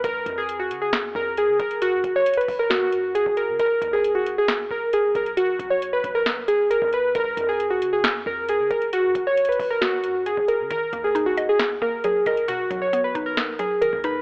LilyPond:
<<
  \new Staff \with { instrumentName = "Synth keys" } { \time 4/4 \key ges \major \tempo 4 = 135 bes'8. aes'8 ges'8 aes'16 r8 bes'8 aes'8 bes'8 | ges'8. des''8 ces''8 bes'16 ges'4 aes'8 bes'8 | bes'8. aes'8 ges'8 aes'16 r8 bes'8 aes'8 bes'8 | fis'8. des''8 b'8 bes'16 r8 aes'8 bes'8 b'8 |
bes'8. aes'8 ges'8 aes'16 r8 bes'8 aes'8 bes'8 | ges'8. des''8 ces''8 bes'16 ges'4 aes'8 bes'8 | bes'8. aes'8 ges'8 aes'16 r8 bes'8 aes'8 bes'8 | fis'8. des''8 b'8 bes'16 r8 aes'8 bes'8 b'8 | }
  \new Staff \with { instrumentName = "Synth pluck" } { \time 4/4 \key ges \major r1 | r1 | r1 | r1 |
r1 | r1 | ees8 bes8 ees'8 ees''4 bes8 ges8 ees''8 | b,8 fis8 b8 dis'4 fis8 dis8 dis'8 | }
  \new Staff \with { instrumentName = "808-style bass" } { \clef bass \time 4/4 \key ges \major des,8 f,4 des8 f,8 f,8. des16 ges,,8~ | ges,,16 ges,16 ges,,4 ges,,4 ges,8. ges,,8 des16 | ees,,8 ees,4~ ees,16 ges,,16. ees,16. ees,,8. bes,,16 ces,8~ | ces,8 b,,4 b,,4.~ b,,16 dis,8. |
des,8 f,4 des8 f,8 f,8. des16 ges,,8~ | ges,,16 ges,16 ges,,4 ges,,4 ges,8. ges,,8 des16 | ees,,8 ees,4~ ees,16 ges,,16. ees,16. ees,,8. bes,,16 ces,8~ | ces,8 b,,4 b,,4.~ b,,16 dis,8. | }
  \new DrumStaff \with { instrumentName = "Drums" } \drummode { \time 4/4 <hh bd>8 <hh bd>8 hh8 hh8 <hh sn>8 bd8 hh8 <hh bd>16 hh16 | hh8 <hh bd>8 \tuplet 3/2 { hh16 hh16 hh16 <hho bd>16 r16 r16 } <hh sn>8 hh8 hh16 bd16 hh8 | <hh bd>8 <hh bd>8 hh8 hh8 <hh sn>8 bd8 hh8 <hh bd>16 hh16 | hh8 <hh bd>8 hh8 <hh bd>8 <hh sn>8 hh8 hh16 bd16 hh8 |
<hh bd>8 <hh bd>8 hh8 hh8 <hh sn>8 bd8 hh8 <hh bd>16 hh16 | hh8 <hh bd>8 \tuplet 3/2 { hh16 hh16 hh16 <hho bd>16 r16 r16 } <hh sn>8 hh8 hh16 bd16 hh8 | <hh bd>8 <hh bd>8 hh8 hh8 <hh sn>8 bd8 hh8 <hh bd>16 hh16 | hh8 <hh bd>8 hh8 <hh bd>8 <hh sn>8 hh8 hh16 bd16 hh8 | }
>>